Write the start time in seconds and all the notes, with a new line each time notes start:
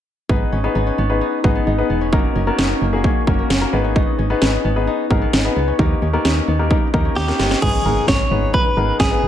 0.29 G#1 B3 D#4 G#4 B4, kick
0.52 G#1 C#4
0.64 B3 D#4 G#4 B4
0.75 G#1 D#4
0.87 C#4
0.98 G#1 B3
1.10 B3 D#4 G#4 B4
1.21 D#4
1.44 G#1 B3 D#4 G#4 B4, kick
1.55 B3
1.67 G#1 D#4
1.78 B3 D#4 G#4 B4
1.90 E1 B3
2.01 C#4
2.12 F#1 A#3 C#4 D#4 F#4 A#4, kick
2.35 F#1 C#4
2.47 A#3 B3 C#4 F#4 A#4
2.58 F#1 D#4, snare
2.70 C#4
2.81 F#1 A#3
2.93 A#3 C#4 F#4 G#4
3.04 C#4, kick
3.27 F#1 A#3 C#4 F#4 A#4, kick
3.39 A#3
3.50 F#1 C#4, snare
3.61 A#3 C#4 F#4 A#4
3.73 G#1 B3 D#4 G#4 B4
3.84 C#4
3.96 D#4, kick
4.19 G#1 C#4
4.30 B3 D#4 G#4 B4
4.41 G#1 D#4, snare
4.53 C#4
4.64 G#1 B3
4.76 B3 D#4 G#4 B4
4.87 D#4
5.10 G#1 B3 D#4 G#4 A#4, kick
5.22 B3
5.33 G#1 D#4, snare
5.45 B3 D#4 G#4 B4
5.56 C#2 B3
5.68 C#4
5.79 D#2 A#3 D#4 G4 A#4, kick
6.02 D#2 C#4
6.13 A#3 B3 D#4 G4 A#4
6.25 D#2 D#4, snare
6.36 C#4
6.48 D#2 B3
6.59 A#3 D#4 G4 A#4
6.71 D#4, kick
6.94 D#2 A#3 D#4 G4 A#4, kick
7.05 C#4
7.16 D#2 D#4 G4, snare
7.28 A#3 D#4 G4 A#4, snare
7.39 G1 B3, snare
7.51 C#4, snare
7.62 G#1 B3 D#4 G#4 B4, kick, crash, impact
7.85 G#1 B3 D#4 G#4 A#4
8.08 G#1 C#5, kick, snare
8.31 G#1 B3 D#4 G#4 B4
8.54 B4, kick
8.77 G#1 B3 D#4 G#4 A#4
9.00 G#1 G#4, kick, snare
9.11 B3 D#4 G#4 B4
9.23 E1